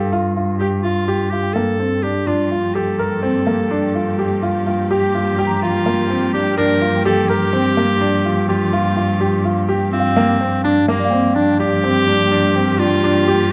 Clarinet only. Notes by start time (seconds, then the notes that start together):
Already playing: A4
0.58 G4
0.82 F4
1.30 G4
1.54 A4
2.03 G4
2.27 F4
2.75 A4
4.90 G4
5.62 F4
6.33 G4
6.58 A#4
7.05 A4
7.29 G4
8.48 F4
9.92 C4
10.63 D4
10.88 A#3
11.35 D4
11.59 G4
12.79 F4